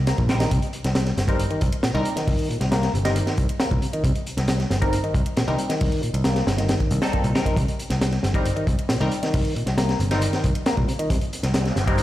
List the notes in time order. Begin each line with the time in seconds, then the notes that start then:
Already playing: C2
0.07 A#3, snare, closed hi-hat
0.18 A#1 A#2, kick, closed hi-hat
0.29 C3 G3 C4 D#4 A#4, snare, closed hi-hat
0.40 D#3, snare, closed hi-hat
0.51 C2 C3, kick, closed hi-hat
0.62 closed hi-hat
0.73 closed hi-hat
0.84 C2, snare, closed hi-hat
0.95 snare, closed hi-hat
1.06 snare, closed hi-hat
1.17 G1, snare, closed hi-hat
1.28 G3 C4 D#4 A#4, kick, closed hi-hat
1.40 closed hi-hat
1.51 D#3, closed hi-hat
1.61 C2, kick, closed hi-hat
1.73 closed hi-hat
1.83 A#2, snare, closed hi-hat
1.94 C2 D#3 G3 C4 D#4 A#4, closed hi-hat
2.05 closed hi-hat
2.16 D#3, snare, closed hi-hat
2.28 C2, kick, closed hi-hat, open hi-hat
2.39 closed hi-hat
2.50 A#2, closed hi-hat
2.61 C2, snare, closed hi-hat
2.72 A#3, snare, closed hi-hat
2.83 snare, closed hi-hat
2.94 G1 C3, closed hi-hat
3.05 D#3 G3 C4 D#4 A#4, snare, closed hi-hat
3.16 closed hi-hat
3.27 snare, closed hi-hat
3.38 C2, kick, closed hi-hat
3.49 closed hi-hat
3.60 A#3, snare, closed hi-hat
3.71 C2 A#2, kick, closed hi-hat
3.82 C3, closed hi-hat
3.93 D#3, closed hi-hat
4.04 C2 C3, kick, closed hi-hat
4.15 closed hi-hat
4.27 closed hi-hat
4.37 C2, snare, closed hi-hat
4.48 snare, closed hi-hat
4.59 snare, closed hi-hat
4.70 G1, snare, closed hi-hat
4.81 G3 C4 D#4 A#4, kick, closed hi-hat
4.93 closed hi-hat
5.04 D#3, closed hi-hat
5.14 C2, kick, closed hi-hat
5.26 closed hi-hat
5.37 A#2, snare, closed hi-hat
5.48 C2 D#3 G3 C4 D#4 A#4, closed hi-hat
5.58 closed hi-hat
5.70 D#3, snare, closed hi-hat
5.81 C2, kick, closed hi-hat, open hi-hat
5.92 closed hi-hat
6.03 A#2, closed hi-hat
6.14 C2, closed hi-hat
6.24 A#3, snare, closed hi-hat
6.36 snare, closed hi-hat
6.47 G1 C3, snare, closed hi-hat
6.58 D#3, snare, closed hi-hat
6.68 snare, closed hi-hat
6.80 kick, closed hi-hat
6.91 C2, closed hi-hat
7.02 G3 C4 D#4 A4, snare, closed hi-hat
7.13 A#3, kick, closed hi-hat
7.24 C2 A#2, closed hi-hat
7.35 C3 G3 C4 D#4 A#4, snare, closed hi-hat
7.46 D#3, kick, closed hi-hat
7.57 C2 C3, kick, closed hi-hat
7.68 closed hi-hat
7.79 closed hi-hat
7.90 C2, snare, closed hi-hat
8.01 snare, closed hi-hat
8.11 snare, closed hi-hat
8.23 G1, snare, closed hi-hat
8.34 G3 C4 D#4 A#4, kick, closed hi-hat
8.45 closed hi-hat
8.56 D#3, closed hi-hat
8.67 C2, kick, closed hi-hat
8.79 closed hi-hat
8.89 A#2, snare, closed hi-hat
9.00 C2 D#3 G3 C4 D#4 A#4, closed hi-hat
9.11 closed hi-hat
9.23 D#3, snare, closed hi-hat
9.34 C2, kick, closed hi-hat, open hi-hat
9.45 closed hi-hat
9.56 A#2, closed hi-hat
9.66 C2, snare, closed hi-hat
9.78 A#3, snare, closed hi-hat
9.89 snare, closed hi-hat
9.99 G1 C3, closed hi-hat
10.11 D#3 G3 C4 D#4 A#4, snare, closed hi-hat
10.21 closed hi-hat
10.33 snare, closed hi-hat
10.44 C2, kick, closed hi-hat
10.55 closed hi-hat
10.66 A#3, snare, closed hi-hat
10.77 C2 A#2, kick, closed hi-hat
10.88 C3, closed hi-hat
10.99 D#3, closed hi-hat
11.10 C2 C3, kick, closed hi-hat, riser
11.21 closed hi-hat
11.33 closed hi-hat
11.43 C2, snare, closed hi-hat
11.54 snare, closed hi-hat
11.65 snare, closed hi-hat
11.76 G1, snare, closed hi-hat
11.87 G3 C4 D#4 A#4, kick, closed hi-hat
11.98 closed hi-hat